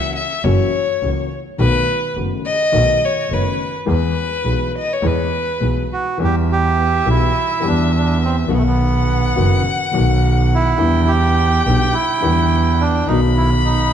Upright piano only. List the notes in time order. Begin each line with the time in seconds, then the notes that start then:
Already playing: C#2 C#3 E3 A#3 C#4 F#4
0.44 F#2 E3 F#3 A#3 C#4 F#4
1.01 C#2 C#3 E3 A#3 C#4 F#4
1.58 B1 B2 D#3 A3 B3 F#4
2.16 F#1 F#2 D#3 A3 B3 F#4
2.72 B1 B2 D#3 A3 B3 F#4
3.29 F#1 F#2 D#3 A3 B3 F#4
3.85 E2 E3 G#3 B3 G#4
4.44 B1 B2 E3 G#3 B3 G#4
5.02 E2 E3 G#3 B3 G#4
5.60 B1 B2 E3 G#3 B3 G#4
6.18 E2 E3 G3 B3 G4
7.05 B1 B2 E3 G3 B3 G4
7.61 E2 E3 G3 B3 G4
8.46 B1 B2 D#3 F#3 B3 F#4
9.35 F#1 F#2 D#3 F#3 B3 F#4
9.91 B1 B2 D#3 F#3 B3 F#4
10.76 E2 D3 E3 G3 B3 E4
11.65 B1 B2 D3 G3 B3 E4
12.21 E2 D3 E3 G3 B3 E4
13.07 B1 B2 D#3 F#3 B3
13.11 F#4